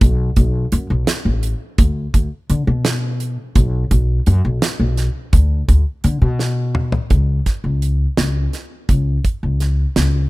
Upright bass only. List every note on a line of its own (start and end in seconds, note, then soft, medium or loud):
0.01 0.28 B1 medium
0.37 0.64 B1 medium
0.72 0.86 F#2 medium
0.90 1.04 B1 medium
1.25 1.52 A1 medium
1.78 2.05 D2 medium
2.14 2.27 D2 medium
2.50 2.63 D3 medium
2.67 3.34 B2 medium
3.56 3.83 B1 medium
3.91 4.18 B1 medium
4.27 4.40 F#2 medium
4.45 4.58 B1 medium
4.80 5.07 B1 medium
5.33 5.60 D2 medium
5.68 5.82 D2 medium
6.04 6.18 D3 medium
6.22 6.89 B2 medium
7.11 7.38 C#2 medium
7.64 8.05 C#2 medium
8.18 8.45 C#2 medium
8.89 9.16 C#2 medium
9.43 9.84 C#2 medium
9.96 10.23 C#2 medium